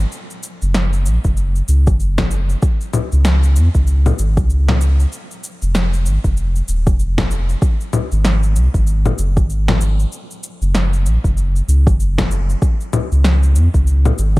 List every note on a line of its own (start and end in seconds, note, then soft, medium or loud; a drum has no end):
0.12 cabasa soft
0.30 cabasa soft
0.43 cabasa medium
0.62 1.07 F#1 medium
0.62 cabasa soft
0.74 snare medium
0.74 cabasa soft
0.93 cabasa soft
1.06 1.18 A#1 loud
1.06 cabasa medium
1.24 1.62 F#1 medium
1.24 kick medium
1.24 cabasa soft
1.37 cabasa soft
1.56 cabasa soft
1.68 1.89 C#2 loud
1.68 cabasa medium
1.87 2.56 F#1 medium
1.87 kick loud
1.87 cabasa soft
2.00 cabasa soft
2.18 kick medium
2.18 snare medium
2.18 low conga medium
2.18 cabasa soft
2.31 cabasa medium
2.49 cabasa soft
2.62 kick loud
2.62 cabasa soft
2.81 cabasa soft
2.93 low conga medium
2.93 cabasa medium
3.12 3.58 C#2 medium
3.12 cabasa soft
3.25 snare medium
3.25 cabasa soft
3.43 cabasa soft
3.56 3.69 F2 loud
3.56 cabasa medium
3.75 4.12 C#2 medium
3.75 kick medium
3.75 cabasa soft
3.87 cabasa soft
4.06 low conga medium
4.06 cabasa soft
4.19 4.39 G#1 medium
4.19 cabasa medium
4.37 5.06 C#2 medium
4.37 kick loud
4.37 cabasa soft
4.50 cabasa soft
4.68 snare medium
4.68 low conga medium
4.81 cabasa medium
5.00 cabasa soft
5.12 cabasa soft
5.31 cabasa soft
5.44 cabasa medium
5.62 6.07 F1 medium
5.62 cabasa soft
5.75 snare medium
5.75 cabasa soft
5.93 cabasa soft
6.06 6.18 G#1 loud
6.06 cabasa medium
6.24 6.62 F1 medium
6.24 kick medium
6.24 cabasa soft
6.37 cabasa soft
6.56 cabasa soft
6.68 6.88 D#1 medium
6.68 cabasa medium
6.87 7.55 F1 medium
6.87 kick loud
6.87 cabasa soft
6.99 cabasa soft
7.18 kick medium
7.18 snare medium
7.18 low conga medium
7.18 cabasa soft
7.31 cabasa medium
7.49 cabasa soft
7.62 kick loud
7.62 cabasa soft
7.81 cabasa soft
7.93 low conga medium
7.93 cabasa medium
8.12 8.57 G#1 medium
8.12 cabasa soft
8.25 snare medium
8.25 cabasa soft
8.43 cabasa soft
8.56 8.68 C2 loud
8.56 cabasa medium
8.74 9.12 G#1 medium
8.74 kick medium
8.74 cabasa soft
8.87 cabasa soft
9.06 low conga medium
9.06 cabasa soft
9.18 9.38 F#1 loud
9.18 cabasa medium
9.37 10.05 G#1 medium
9.37 kick loud
9.37 cabasa soft
9.50 cabasa soft
9.68 snare medium
9.68 low conga medium
9.81 cabasa medium
10.00 cabasa soft
10.12 cabasa soft
10.31 cabasa soft
10.43 cabasa medium
10.61 11.07 F#1 loud
10.61 cabasa soft
10.75 snare medium
10.75 cabasa soft
10.93 cabasa soft
11.05 11.18 A#1 loud
11.05 cabasa medium
11.24 11.62 F#1 medium
11.24 kick medium
11.24 cabasa soft
11.37 cabasa soft
11.56 cabasa soft
11.68 11.88 C#2 loud
11.68 cabasa medium
11.87 12.56 F#1 medium
11.87 kick loud
11.87 cabasa soft
12.00 cabasa soft
12.18 kick medium
12.18 snare medium
12.18 low conga medium
12.18 cabasa soft
12.31 cabasa medium
12.50 cabasa soft
12.62 kick loud
12.62 cabasa soft
12.81 cabasa soft
12.93 low conga medium
12.93 cabasa medium
13.12 13.57 C#2 medium
13.12 cabasa soft
13.24 snare medium
13.24 cabasa soft
13.43 cabasa soft
13.56 13.68 F2 loud
13.56 cabasa medium
13.74 14.12 C#2 medium
13.74 kick medium
13.74 cabasa soft
13.87 cabasa soft
14.05 low conga medium
14.05 cabasa soft
14.18 14.38 G#1 loud
14.18 cabasa medium
14.37 14.40 C#2 medium
14.37 kick loud
14.37 cabasa soft